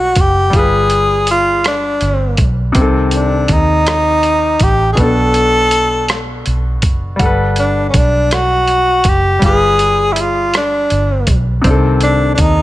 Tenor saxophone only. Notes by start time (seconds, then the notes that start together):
Already playing: F#4
0.20 G4
0.57 G#4
1.31 F4
1.68 D4
3.15 D4
3.53 D#4
4.63 G4
4.93 G#4
5.01 A4
7.59 D4
7.89 C#4
7.97 D4
8.34 F#4
9.08 G4
9.46 G#4
10.12 E4
10.20 F4
10.57 D4
12.04 D4
12.35 D4
12.41 D#4